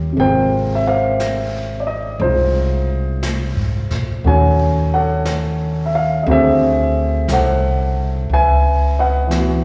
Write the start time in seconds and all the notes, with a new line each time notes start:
Already playing: D#2 D#3 G3 C#4 F4 G4 A#4 C#5 F5
0.13 C3
0.17 G#1 G#3 A#3 A#4 C5 G5, brush sweep
0.24 F4
0.75 E5
0.87 A#4 C5 F5
1.20 brush sweep, snare, hi-hat pedal
1.80 D5
1.87 D#5
2.20 C2 G#3 D#4 F4 C5, brush sweep
3.23 brush sweep, snare, hi-hat pedal
3.56 G#2
3.90 A#2, snare
4.24 D#2 D#3 A3 C#4 F#4 G#5, brush sweep
4.29 C#5
4.94 A4 C#5 F#5
5.25 brush sweep, snare, hi-hat pedal
5.86 E5
5.95 F5
6.23 D2 D3 A3 D#5
6.28 C4 F#4 G#4 C5 E5, brush sweep
7.28 C2, brush sweep, snare, hi-hat pedal
7.32 A4 C5 F#5
8.30 C#2 B4 E5, brush sweep
8.34 G#5
8.99 B4 D#5 F#5
9.27 E3 B3, brush sweep, snare, hi-hat pedal
9.38 F#4